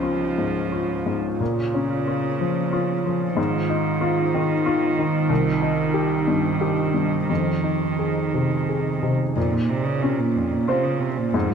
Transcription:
Already playing: upright piano C#2 C#4, cello F3, ambient pad C#4 F4 C#5
0.03 upright piano F4
0.38 upright piano G#2
0.72 upright piano F4
1.06 upright piano G#2
1.39 upright piano A#2, cello C#3, ambient pad C5
1.74 upright piano C#4
2.08 upright piano F4
2.41 upright piano F3
2.73 upright piano F4
3.05 upright piano F3
3.36 upright piano G#2, cello D#3, ambient pad D#4
3.70 upright piano D#4
4.01 upright piano F4
4.34 upright piano D#3
4.66 upright piano F4
4.99 upright piano D#3
5.29 upright piano C2, ambient pad G4
5.62 upright piano D#4
5.94 upright piano G4
6.28 upright piano G2
6.61 upright piano G4
6.94 upright piano G2
7.29 upright piano F2, cello D#3, ambient pad G#4 C5
7.64 upright piano D#4
7.99 upright piano G#4
8.34 upright piano C3
8.69 upright piano G#4
9.03 upright piano C3
9.36 cello F2, upright piano A#2, ambient pad C#4 F4 C5
9.52 cello A#2
9.69 cello C3
9.84 cello C#3
10.02 cello C3, upright piano C#4
10.20 cello A#2
10.37 cello F2
10.51 cello A#2
10.68 cello C3, upright piano F4 C5
10.84 cello C#3
11.00 cello C3
11.18 cello A#2
11.34 cello F2, upright piano G#2
11.50 cello G#2

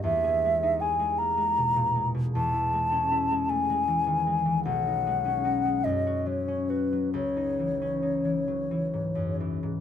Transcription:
Already playing: harp D#4
0.04 harp E2, flute E5
0.24 harp G#4
0.45 harp G#3
0.63 harp D#4
0.81 harp G#4, flute G#5
0.99 harp G#3
1.18 harp A#3, flute A#5
1.37 harp G#3
1.58 harp B2
1.76 harp A#2
1.95 harp G#3
2.15 harp B2
2.34 harp E2, flute A5
2.53 harp E4
2.73 harp G#3
2.92 harp C#4
3.12 harp E4
3.31 harp G#3
3.49 harp A3, flute G#5
3.70 harp G#3
3.88 harp E3
4.07 harp D#3
4.27 harp G#3
4.45 harp E3
4.65 harp B1, flute F#5
4.87 harp D#4
5.06 harp G#3
5.25 harp C#4
5.45 harp D#4
5.65 harp G#3
5.84 harp F#2, flute D#5
6.07 harp F#4
6.26 harp F#3, flute C#5
6.48 harp C#4
6.69 harp F#4, flute B4
6.93 harp F#3
7.14 harp C#2, flute C#5
7.37 harp D#4
7.59 harp E3
7.82 harp C#4
8.02 harp D#4
8.25 harp E3
8.48 harp F#3
8.71 harp E3
8.94 harp G#2
9.15 harp F#2
9.40 harp E3
9.63 harp G#2

